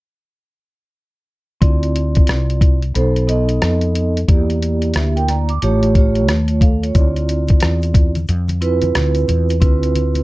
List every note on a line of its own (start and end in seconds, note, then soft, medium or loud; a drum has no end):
1.61 2.25 D2 loud
1.61 2.78 C4 medium
1.61 2.78 E4 medium
1.61 2.78 F4 medium
1.61 2.79 D5 medium
1.61 kick loud
1.61 closed hi-hat medium
1.83 closed hi-hat soft
1.96 closed hi-hat medium
2.15 kick medium
2.15 closed hi-hat soft
2.27 2.92 C2 medium
2.27 cross-stick loud
2.27 closed hi-hat medium
2.50 closed hi-hat soft
2.61 kick loud
2.61 closed hi-hat medium
2.82 closed hi-hat soft
2.95 3.59 B1 loud
2.95 3.24 B3 medium
2.95 3.24 D#4 medium
2.95 3.25 A4 medium
2.95 3.25 C5 medium
2.95 closed hi-hat medium
3.16 closed hi-hat soft
3.27 4.17 B3 medium
3.27 4.17 D#4 medium
3.27 4.17 A4 medium
3.27 4.17 D#5 medium
3.27 closed hi-hat medium
3.49 closed hi-hat soft
3.62 4.25 F2 medium
3.62 cross-stick loud
3.62 closed hi-hat medium
3.81 closed hi-hat soft
3.95 closed hi-hat medium
4.17 closed hi-hat medium
4.28 4.92 E2 medium
4.28 5.45 A#3 medium
4.28 5.45 E4 medium
4.28 4.94 G4 medium
4.28 4.95 D5 medium
4.28 kick loud
4.28 closed hi-hat medium
4.50 closed hi-hat soft
4.62 closed hi-hat medium
4.82 closed hi-hat soft
4.94 5.59 D2 medium
4.94 5.15 G4 soft
4.94 5.15 E5 medium
4.94 cross-stick loud
4.94 closed hi-hat medium
5.16 5.28 A#4 medium
5.16 5.28 G5 medium
5.16 closed hi-hat soft
5.28 5.49 D5 medium
5.28 5.49 A#5 medium
5.28 cross-stick soft
5.28 closed hi-hat medium
5.49 5.81 D6 medium
5.49 closed hi-hat soft
5.62 6.29 A1 medium
5.62 5.92 A3 medium
5.62 5.92 F4 medium
5.62 5.92 G4 medium
5.62 5.92 C#5 medium
5.62 closed hi-hat medium
5.83 closed hi-hat soft
5.95 6.84 A3 medium
5.95 6.29 F4 medium
5.95 6.29 G4 medium
5.95 6.29 C#5 medium
5.95 kick medium
5.95 closed hi-hat medium
6.15 closed hi-hat soft
6.28 6.92 D#2 medium
6.28 cross-stick loud
6.28 closed hi-hat medium
6.48 6.62 F4 soft
6.48 6.61 C#5 medium
6.48 closed hi-hat medium
6.61 6.82 A4 medium
6.61 6.82 F5 medium
6.61 kick medium
6.61 closed hi-hat medium
6.83 6.94 F4 soft
6.83 7.14 C#5 medium
6.83 closed hi-hat medium
6.95 7.58 D2 medium
6.95 8.12 C4 medium
6.95 8.12 E4 medium
6.95 8.12 F4 medium
6.95 8.12 D5 medium
6.95 kick loud
6.95 closed hi-hat medium
6.95 shaker medium
7.16 closed hi-hat soft
7.16 shaker soft
7.29 closed hi-hat medium
7.29 shaker soft
7.48 kick medium
7.48 closed hi-hat medium
7.48 high conga soft
7.48 shaker soft
7.60 8.25 E2 medium
7.60 cross-stick loud
7.60 closed hi-hat medium
7.60 shaker medium
7.82 closed hi-hat soft
7.82 shaker soft
7.94 kick loud
7.94 closed hi-hat medium
7.94 low conga medium
7.94 shaker soft
8.15 closed hi-hat soft
8.15 high conga medium
8.15 shaker soft
8.28 8.92 F2 loud
8.28 closed hi-hat medium
8.28 shaker medium
8.48 closed hi-hat soft
8.48 high conga medium
8.48 shaker soft
8.61 9.50 C4 medium
8.61 9.50 E4 medium
8.61 9.50 F4 medium
8.61 9.51 B4 medium
8.61 closed hi-hat medium
8.61 shaker soft
8.82 closed hi-hat soft
8.82 high conga medium
8.82 shaker soft
8.95 9.27 D2 medium
8.95 cross-stick loud
8.95 closed hi-hat medium
8.95 low conga medium
8.95 shaker medium
9.15 closed hi-hat soft
9.15 shaker soft
9.28 9.60 E2 medium
9.28 closed hi-hat medium
9.28 low conga medium
9.28 shaker soft
9.49 closed hi-hat medium
9.49 shaker soft
9.61 10.23 D2 loud
9.61 10.23 C4 medium
9.61 10.23 E4 medium
9.61 10.23 F4 medium
9.61 10.23 B4 medium
9.61 kick loud
9.61 closed hi-hat medium
9.61 shaker medium
9.83 closed hi-hat soft
9.83 shaker soft
9.95 closed hi-hat medium
9.95 high conga soft
9.95 shaker soft
10.15 closed hi-hat medium
10.15 high conga soft
10.15 shaker soft